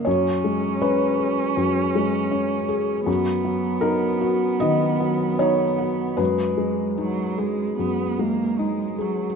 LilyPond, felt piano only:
<<
  \new Staff \with { instrumentName = "Felt piano" } { \time 4/4 \key gis \dorian \tempo 4 = 76 cis''4 b'2~ b'8 r8 | r4 ais'4 dis''4 cis''4 | b'2.~ b'8 r8 | }
  \new Staff \with { instrumentName = "Felt piano" } { \time 4/4 \key gis \dorian fis,8 gis8 cis'8 gis'8 fis,8 gis8 cis'8 gis'8 | fis,8 fis8 dis'8 fis'8 dis8 fis8 dis'8 fis'8 | fis,8 gis8 dis'8 gis'8 fis,8 gis8 dis'8 gis'8 | }
>>